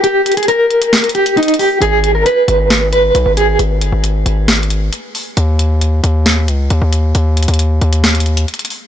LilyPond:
<<
  \new Staff \with { instrumentName = "Clean electric guitar" } { \time 4/4 \key gis \minor \tempo 4 = 135 g'8. gis'16 ais'4. g'8 dis'8 g'8 | gis'8. ais'16 b'4. b'4 gis'8 | r1 | r1 |
r1 | }
  \new Staff \with { instrumentName = "808-style bass" } { \clef bass \time 4/4 \key gis \minor r1 | gis,,4 r8 gis,,4. b,,16 gis,,8. | gis,,8 g,,16 gis,,8. gis,,4. r4 | dis,4. dis,4 cis,8 dis,16 dis,8. |
dis,8. dis,8. dis,4. r4 | }
  \new DrumStaff \with { instrumentName = "Drums" } \drummode { \time 4/4 hh8 hh32 hh32 hh32 hh32 hh8 hh16 hh16 <hh sn>32 hh32 hh32 hh32 hh16 hh16 hh32 hh32 hh32 hh32 hho8 | hh8 hh8 hh8 hh8 <hh sn>8 hh8 hh8 hh8 | hh8 hh8 hh8 hh8 \tuplet 3/2 { <hh sn>16 hh16 hh16 hh16 r16 r16 } hh8 hho8 | hh8 hh8 hh8 hh8 <hh sn>8 hh8 hh8 hh8 |
hh8 hh32 hh32 hh32 hh32 hh8 hh16 hh16 <hh sn>32 hh32 hh32 hh32 hh16 hh16 hh32 hh32 hh32 hh32 hho8 | }
>>